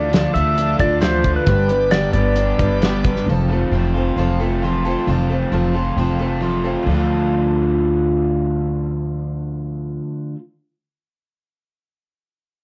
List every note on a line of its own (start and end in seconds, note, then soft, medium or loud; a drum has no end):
0.00 0.25 D2 medium
0.00 0.32 A3 medium
0.00 0.12 D4 soft
0.00 0.13 F4 soft
0.00 1.45 F4 medium
0.00 0.13 A4 medium
0.00 1.46 A4 medium
0.00 0.37 D5 medium
0.00 1.45 D5 medium
0.13 0.35 D3 medium
0.13 0.35 F3 medium
0.13 0.35 D4 medium
0.13 0.35 F4 medium
0.13 0.34 A4 medium
0.13 snare loud
0.13 closed hi-hat medium
0.33 0.73 D2 medium
0.33 0.99 A3 medium
0.33 0.57 D4 soft
0.33 0.58 F4 soft
0.33 0.57 A4 soft
0.33 0.76 E5 loud
0.33 closed hi-hat medium
0.58 0.80 F3 soft
0.58 0.79 D4 medium
0.58 0.78 F4 medium
0.58 0.78 A4 medium
0.58 closed hi-hat medium
0.78 1.37 D2 medium
0.78 1.22 D3 medium
0.78 1.01 D4 soft
0.78 1.00 F4 soft
0.78 1.01 A4 medium
0.78 1.01 D5 medium
0.78 kick medium
0.78 closed hi-hat medium
1.01 1.24 D3 medium
1.01 1.24 F3 medium
1.01 1.46 A3 medium
1.01 1.24 D4 medium
1.01 1.24 F4 medium
1.01 1.23 A4 medium
1.01 1.33 C5 medium
1.01 snare loud
1.01 closed hi-hat medium
1.23 1.46 D3 medium
1.23 1.48 D4 soft
1.23 1.47 F4 medium
1.23 1.47 A4 medium
1.23 kick medium
1.23 closed hi-hat medium
1.36 1.94 B4 medium
1.47 2.04 G1 medium
1.47 1.70 G2 medium
1.47 1.70 D3 medium
1.47 1.70 G3 medium
1.47 1.70 B3 medium
1.47 1.70 D4 medium
1.47 3.26 G4 medium
1.47 1.69 B4 medium
1.47 3.26 B4 medium
1.47 3.26 D5 medium
1.47 kick loud
1.47 closed hi-hat medium
1.68 2.81 D3 medium
1.68 1.92 G3 soft
1.68 1.93 B3 soft
1.68 1.92 D4 soft
1.68 1.92 B4 medium
1.68 closed hi-hat medium
1.91 2.15 G2 medium
1.91 2.15 D3 medium
1.91 2.15 G3 medium
1.91 2.15 B3 medium
1.91 2.15 D4 medium
1.91 2.14 B4 medium
1.91 2.12 D5 medium
1.91 snare loud
1.91 closed hi-hat medium
2.13 2.52 G1 medium
2.13 2.80 B3 medium
2.13 2.38 D4 soft
2.13 2.37 B4 medium
2.13 2.77 D5 medium
2.13 closed hi-hat medium
2.17 2.36 G3 soft
2.17 2.37 B3 soft
2.36 2.59 G3 medium
2.36 2.60 B3 medium
2.36 2.60 D4 medium
2.36 2.59 B4 medium
2.36 closed hi-hat medium
2.58 3.17 G1 medium
2.58 3.02 G3 medium
2.58 2.83 B3 soft
2.58 2.83 D4 soft
2.58 2.82 B4 medium
2.58 kick medium
2.58 closed hi-hat medium
2.63 2.83 G3 soft
2.82 3.05 G2 medium
2.82 3.05 D3 medium
2.82 3.05 G3 medium
2.82 3.05 B3 medium
2.82 3.05 D4 medium
2.82 3.03 B4 medium
2.82 snare loud
2.82 closed hi-hat medium
3.04 3.28 G3 medium
3.04 3.28 B3 medium
3.04 3.28 D4 medium
3.04 3.27 B4 medium
3.04 kick medium
3.04 closed hi-hat medium
3.16 snare soft
3.27 3.65 F1 medium
3.27 4.39 F2 medium
3.27 3.50 F3 medium
3.27 3.50 C4 medium
3.27 3.50 F4 medium
3.27 3.50 A4 medium
3.49 4.39 A3 medium
3.49 3.73 C4 soft
3.49 3.73 F4 medium
3.49 3.72 A4 medium
3.71 4.09 F1 medium
3.71 3.95 F3 medium
3.71 3.95 C4 medium
3.71 3.96 F4 medium
3.71 3.94 A4 medium
3.95 4.17 C4 soft
3.95 4.17 F4 soft
3.95 4.17 A4 medium
4.16 4.93 F1 medium
4.16 4.40 F3 medium
4.16 4.40 C4 medium
4.16 4.40 F4 medium
4.16 4.38 A4 medium
4.39 5.27 A3 medium
4.39 4.63 C4 soft
4.39 4.62 F4 soft
4.39 4.62 A4 medium
4.62 4.84 F3 medium
4.62 4.85 C4 medium
4.62 4.85 F4 medium
4.62 4.84 A4 medium
4.85 5.07 C4 soft
4.85 5.08 F4 medium
4.85 5.07 A4 medium
5.05 5.45 F1 medium
5.05 6.19 F2 medium
5.05 5.30 F3 medium
5.05 5.30 C4 medium
5.05 5.30 F4 medium
5.10 5.28 A4 medium
5.29 6.18 A3 medium
5.29 5.51 C4 soft
5.29 5.52 F4 soft
5.29 5.52 A4 medium
5.52 5.90 F1 medium
5.52 5.74 F3 medium
5.52 5.75 C4 medium
5.52 5.74 F4 medium
5.52 5.73 A4 medium
5.74 5.97 C4 soft
5.74 5.97 F4 soft
5.74 5.97 A4 medium
5.97 6.73 F1 medium
5.97 6.20 F3 medium
5.97 6.20 C4 medium
5.97 6.19 F4 medium
5.97 6.18 A4 medium
6.19 6.85 A3 medium
6.19 6.41 C4 soft
6.19 6.41 F4 medium
6.19 6.42 A4 medium
6.40 6.63 F3 medium
6.40 6.64 C4 medium
6.40 6.63 F4 medium
6.40 6.62 A4 medium
6.63 6.87 C4 soft
6.63 6.87 F4 medium
6.63 6.86 A4 soft
6.82 10.32 D3 medium
6.82 10.36 F3 medium
6.82 10.36 A3 medium
6.86 9.97 D2 medium
6.86 10.39 D4 medium
6.86 10.39 A4 medium
6.91 10.41 F4 medium
6.91 10.44 A4 medium